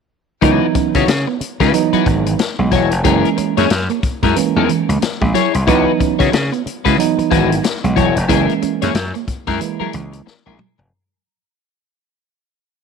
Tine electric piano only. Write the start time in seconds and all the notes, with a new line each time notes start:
0.42 E3 F#3 B3 D#4
1.73 E3 F#3 B3 D#4
3.04 E3 G#3 A#3 C#4
4.36 E3 G#3 A#3 C#4
5.67 E3 F#3 B3 D#4
6.98 E3 F#3 B3 D#4
8.29 E3 G#3 A#3 C#4
9.60 E3 G#3 A#3 E4